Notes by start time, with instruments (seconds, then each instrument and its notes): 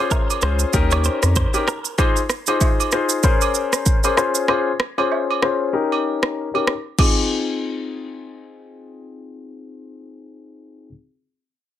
0.00 grand piano C#4 F4 G#4 C5
0.11 clean electric guitar A#4, kick, low woodblock, shaker
0.30 high agogo, shaker
0.42 analog synth bass C#2, grand piano C#4 F4 G#4 C5, clean electric guitar C5, cross-stick, shaker
0.59 shaker
0.73 analog synth bass D#2, grand piano C#4 D#4 G4 A#4, kick, shaker
0.91 clean electric guitar C#5, high agogo, shaker
1.04 clean electric guitar C5, shaker
1.23 analog synth bass F2, cross-stick, shaker
1.36 clean electric guitar C5, kick, shaker
1.54 grand piano C#4 D#4 G4 A#4, high agogo, shaker
1.68 clean electric guitar A#4, cross-stick, shaker
1.85 shaker
1.98 grand piano D#4 F4 G#4 C5, kick, cross-stick, high agogo, shaker
2.16 shaker
2.30 cross-stick, shaker
2.47 grand piano D#4 F4 G#4 C5, high agogo, shaker
2.61 kick, low woodblock, shaker
2.80 high agogo, shaker
2.92 grand piano D#4 F4 G#4 C5, cross-stick, shaker
3.09 shaker
3.23 grand piano C#4 G#4 A#4 C5, kick, shaker
3.41 high agogo, shaker
3.54 shaker
3.73 cross-stick, shaker
3.86 kick, shaker
4.04 grand piano C#4 G#4 A#4 C5, high agogo, shaker
4.17 grand piano C#4 F4 G#4 C5, cross-stick, shaker
4.35 shaker
4.48 grand piano C#4 F4 G#4 C5, cross-stick, high agogo
4.80 cross-stick
4.98 grand piano C#4 F4 G#4 C5, high agogo
5.12 low woodblock
5.31 high agogo
5.42 grand piano C#4 F4 G#4 C5, cross-stick
5.73 grand piano C#4 D#4 G4 A#4
5.92 high agogo
6.23 cross-stick
6.54 grand piano C#4 D#4 G4 A#4, high agogo
6.67 cross-stick
6.98 grand piano C4 D#4 F4 G#4, kick, crash, high agogo